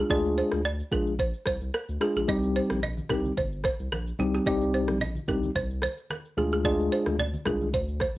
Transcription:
0.10 D2 G#3 D4 F4 G#4 D5, kick, shaker
0.25 shaker
0.37 C5, shaker
0.52 D2, cross-stick, shaker
0.65 D5, shaker
0.80 shaker
0.91 A#1 G#3 D4 F4 G#4 A#4, kick, shaker
1.07 shaker
1.19 C5, kick, shaker
1.34 shaker
1.46 C2 C5, kick, cross-stick, shaker
1.61 C2, shaker
1.74 A#4, cross-stick, shaker
1.89 D2, shaker
2.01 G#3 D4 F4 G#4, cross-stick, shaker
2.16 A#1 G#4, shaker
2.28 C2 G3 C4 D#4 G4 D#5, kick, shaker
2.43 shaker
2.55 C5, shaker
2.70 A#1, cross-stick, high conga, shaker
2.83 D#5, low conga, shaker
2.97 high conga, shaker
3.09 C2 G3 C4 D#4 G4 A#4, kick, cross-stick, low conga, shaker
3.25 high conga, shaker
3.37 G1 C5, kick, low conga, shaker
3.52 shaker
3.64 C5, kick, cross-stick, high conga, shaker
3.80 C2, shaker
3.92 A#1 A#4, cross-stick, high conga, shaker
4.07 shaker
4.19 C2 G3 C4 D#4 G4, high conga, low conga, shaker
4.34 G4, shaker
4.46 C2 G3 C4 D#4 G4 D#5, kick, shaker
4.62 shaker
4.74 C5, shaker
4.88 A#1, cross-stick, high conga, shaker
5.01 D#5, low conga, shaker
5.15 high conga, shaker
5.28 C2 G3 C4 D#4 G4 A#4, kick, low conga, shaker
5.43 high conga, shaker
5.55 C2 C5, kick, low conga, shaker
5.70 shaker
5.82 C5, cross-stick, high conga, shaker
5.98 shaker
6.10 A#4, cross-stick, high conga, shaker
6.25 shaker
6.37 D2 G#3 D4 F4 G#4, high conga, low conga, shaker
6.52 G#4, shaker
6.64 G#3 D4 F4 G#4 D5, kick, shaker
6.80 shaker
6.92 C5, shaker
7.06 D2, cross-stick, high conga, shaker
7.19 D5, low conga, shaker
7.34 high conga, shaker
7.46 C2 G#3 D4 F4 G#4 A#4, kick, cross-stick, low conga, shaker
7.61 high conga, shaker
7.74 D2 C5, kick, low conga, shaker
7.88 shaker
8.00 C5, kick, cross-stick, high conga, shaker

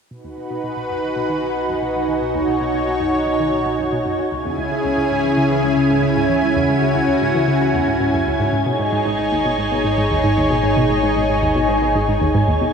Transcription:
0.11 B1 B2 D#4 F#4 B4 G#5
0.24 D#2
0.37 B2
0.50 B2
0.63 B2
0.77 B2
0.90 F#2
1.03 D#3
1.16 B2
1.29 D#3
1.42 B2
1.56 B2
1.69 F#2
1.82 B2
1.95 F#2
2.08 D#3
2.21 B2 C#5
2.35 D#2
2.48 B2
2.61 B2
2.74 B2
2.87 B2
3.00 F#2
3.14 D#3
3.27 B2
3.40 D#3
3.53 B2
3.66 B2
3.79 F#2
3.92 B2
4.06 F#2
4.19 D#3
4.32 C#2 C#3 C#4 E4 G#4 G#5
4.45 E2
4.58 C#2
4.71 C#3
4.85 C#2
4.98 C#2
5.11 G#2
5.24 E3
5.37 C#3
5.50 E3
5.63 C#2
5.77 C#3
5.90 G#2
6.03 C#2
6.16 G#2
6.29 E3
6.42 C#2 F#4
6.56 E2
6.69 C#2
6.82 C#3
6.95 C#2
7.08 C#2
7.21 G#2
7.35 E3
7.48 C#3
7.61 E3
7.74 E2
7.87 G#2
8.00 G#2
8.14 F#2
8.27 C#2
8.40 G#2
8.53 G#1 G#2 D#4 G#4 C#5
8.66 B2
8.79 G#2
8.92 G#2
9.06 G#2
9.19 G#2
9.32 D#2
9.45 B2
9.58 G#2
9.71 B2
9.85 G#2
9.98 G#2
10.11 D#2
10.24 G#2
10.37 D#2
10.50 B2
10.63 G#2
10.77 B2
10.90 G#2
11.03 G#2
11.16 G#2
11.29 G#2
11.42 D#2
11.56 B2
11.69 G#2
11.82 B2
11.95 G#2
12.08 G#2
12.21 D#2
12.35 G#2
12.48 D#2
12.61 B2

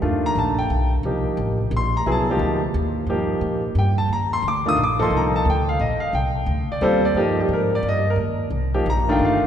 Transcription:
0.02 D#2 D#3 A3 D4 F4
0.26 A#5
0.35 A#1 A5
0.58 G5
0.70 B1
1.03 C2 F3 A#3 D#4 G4
1.37 A1
1.71 A#1
1.77 C6
1.97 A#5
2.06 C2 F#3 B3 E4 G#4
2.12 A5
2.30 F3 A#3 D#4 G4
2.39 D2
2.74 D#2
3.07 G2 F3 A#3 D#4 G4
3.41 A#2
3.75 G2 G5
3.98 A5
4.09 D#2
4.13 A#5
4.33 C6
4.42 D2
4.48 D6
4.66 D#3 A3 D4 F4 D#6
4.77 A#1
4.84 D6
4.99 F3 A#3 D#4 A4 C6
5.10 C2
5.17 A#5
5.36 A5
5.45 D2
5.50 G5
5.69 F5
5.79 A#1 D#5
6.00 F5, muted upright bass stroke
6.13 C2 G5
6.46 D2
6.68 D5, muted upright bass stroke
6.81 D#2 G3 C4 F4 A4 C5
7.05 D5
7.14 G2 F3 A#3 D#4 G4
7.20 D#5
7.40 G4
7.48 G#2
7.53 A#4
7.75 D5
7.83 G2
7.89 D#5
8.10 A#4
8.16 D#2
8.50 C2
8.74 F3 A#3 D#4 G4
8.86 A#1 A#5
9.08 D#3 A3 D4 F4 G5
9.19 G1
9.25 F5

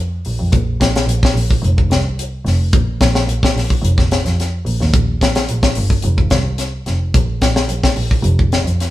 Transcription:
0.25 A#1, open hi-hat
0.39 F2
0.52 A#1, kick, closed hi-hat
0.80 A#1, kick, snare, closed hi-hat
0.94 A#1, snare, closed hi-hat
1.06 A#1, closed hi-hat
1.23 kick, snare
1.34 A#1, open hi-hat
1.50 kick
1.62 F1, closed hi-hat
1.78 G#1, kick
1.90 C2, snare, closed hi-hat
2.19 closed hi-hat
2.45 F1, snare, open hi-hat
2.73 A#1, kick, closed hi-hat
3.01 A#1, kick, snare, closed hi-hat
3.15 A#1, snare
3.27 A#1, closed hi-hat
3.43 kick, snare
3.55 A#1, snare, open hi-hat
3.70 kick
3.81 F1, closed hi-hat
3.98 A#1, kick, snare
4.11 snare, closed hi-hat
4.24 F2, snare, closed hi-hat
4.40 snare, closed hi-hat
4.65 A#1, open hi-hat
4.80 D#2, snare
4.93 A#1, kick, closed hi-hat
5.21 A#1, kick, snare, closed hi-hat
5.35 A#1, snare, closed hi-hat
5.49 A#1, closed hi-hat
5.63 kick, snare
5.75 G1, open hi-hat
5.90 kick
6.02 F1, closed hi-hat
6.17 G#1, kick
6.30 C2, kick, snare, closed hi-hat
6.58 snare, closed hi-hat
6.86 F1, snare, closed hi-hat
7.14 A#1, kick, closed hi-hat
7.42 A#1, kick, snare, closed hi-hat
7.55 A#1, snare
7.68 A#1, closed hi-hat
7.84 kick, snare
7.96 A#1, open hi-hat
8.11 kick
8.22 F1, closed hi-hat
8.39 A#1, kick
8.52 snare, closed hi-hat
8.64 F2, closed hi-hat
8.80 snare, closed hi-hat

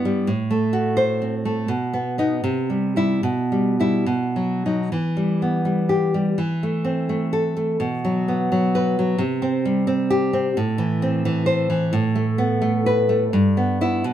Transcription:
Already playing: G2 B3 E4
0.05 G3
0.27 A2
0.51 A3
0.73 F#4
0.97 C5
1.22 C4
1.45 A3
1.68 B2
1.93 B3
2.18 B3 D#4
2.44 C3
2.70 G3
2.96 G3 E4
3.23 B2
3.52 G3
3.80 G3 E4
4.06 B2
4.36 F#3
4.66 F#3 D#4
4.92 E3
5.17 G3
5.42 B3
5.65 G3
5.89 G4
6.14 G3
6.38 E3
6.63 A3
6.85 C4
7.09 A3
7.33 A4
7.57 A3
7.80 B2
8.05 F#3
8.28 B3
8.52 F#3
8.75 B4
8.99 F#3
9.18 C3
9.42 C4
9.65 G3
9.87 C4
10.10 G4
10.33 C4
10.57 A2
10.78 E3
11.02 C4
11.25 E3
11.46 C5
11.70 E3
11.93 A2
12.16 A3
12.38 B3
12.62 A3
12.86 B4
13.09 A3
13.33 G2
13.57 B3
13.81 B3 E4
14.04 B2

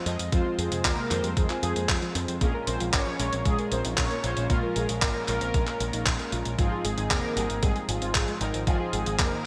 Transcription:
0.06 F2 G#3 C4 F4 D#5, closed hi-hat
0.19 F2, closed hi-hat
0.32 F2 F3 G#3 C4 F4 C5, kick, closed hi-hat
0.46 F4
0.58 F2 G#3 F4 G#4, closed hi-hat
0.71 F2 C3, closed hi-hat
0.85 D#2 A#3 F4 A#4, kick, clap, closed hi-hat
0.98 C3
1.11 F2 D#3 G#3 C4 F4 C5, clap, closed hi-hat
1.24 F2 G3, closed hi-hat
1.37 F2 D#3 G#3 G#4, kick, closed hi-hat
1.50 F4, clap, closed hi-hat
1.63 F2 G#3 F4 G#4, closed hi-hat
1.76 F2 A#3, closed hi-hat
1.89 F2 F4, kick, clap, closed hi-hat
2.02 F3, closed hi-hat
2.15 F2 C4, closed hi-hat
2.28 F2, closed hi-hat
2.41 A#1 A#2 G#3 A#3 C#4 F4 G#4 A#4, kick, closed hi-hat
2.54 A#4
2.67 A#1 C4 A#4 C5, closed hi-hat
2.80 A#1 F3, closed hi-hat
2.93 G#1 C#4 A#4 C#5, kick, clap, closed hi-hat
3.07 F3
3.19 A#1 A#2 G#3 C#4 F4 A#4, closed hi-hat
3.33 A#1 C4, closed hi-hat
3.45 A#1 G#3 G#4, kick, closed hi-hat
3.59 A#4, closed hi-hat
3.72 A#1 C4 A#4 C5, closed hi-hat
3.85 A#1 D#4, closed hi-hat
3.98 A#1 C#4 A#4 C#5, kick, clap, closed hi-hat
4.11 A#3, closed hi-hat
4.24 A#1 A#2 G#3 C#4 F4 C5, closed hi-hat
4.37 A#1 A#2, closed hi-hat
4.50 A#1 A#2 F3 G#3 A#3 C#4 F4 A#4, kick, closed hi-hat
4.63 A#4
4.76 A#1 G#3 G#4 A#4, closed hi-hat
4.89 A#1 F3, closed hi-hat
5.02 G#1 A#3 A#4, kick, clap, closed hi-hat
5.15 F3
5.28 A#1 A#2 G#3 A#3 C#4 F4 A#4, clap, closed hi-hat
5.41 A#1 C4, closed hi-hat
5.54 A#1 G#3, kick, closed hi-hat
5.67 A#4, clap, closed hi-hat
5.80 A#1 A#4, closed hi-hat
5.93 A#1 D#4, closed hi-hat
6.06 A#1 A#4, kick, clap, closed hi-hat
6.19 A#3, closed hi-hat
6.32 A#1 F4, closed hi-hat
6.45 A#1 A#2, closed hi-hat
6.58 G#1 G#2 F3 G#3 C4 D#4 F4 G#4, kick, closed hi-hat
6.72 G#4
6.84 G#1 G#3 G#4, closed hi-hat
6.98 G#1 D#3, closed hi-hat
7.10 F1 A#3 G#4 A#4, kick, clap, closed hi-hat
7.24 D#3
7.37 G#1 G#2 F3 G3 C4 D#4 G#4, closed hi-hat
7.50 G#1 A#3, closed hi-hat
7.62 G#1 G3 G#3 G#4, kick, closed hi-hat
7.76 G#4, closed hi-hat
7.89 G#1 F3 F4 G#4, closed hi-hat
8.02 G#1 C4, closed hi-hat
8.15 G#1 G#4, kick, clap, closed hi-hat
8.28 G#3, closed hi-hat
8.41 G#1 G#2 F3 C4 D#4 A#4, closed hi-hat
8.54 G#1 G#2, closed hi-hat
8.67 G#1 G#2 F3 G#3 C4 D#4 F4 G#4, kick, closed hi-hat
8.80 G#4
8.93 G#1 G#3 G#4, closed hi-hat
9.06 G#1 D#3, closed hi-hat
9.19 F1 A#3 G#4 A#4, kick, clap, closed hi-hat
9.32 D#3

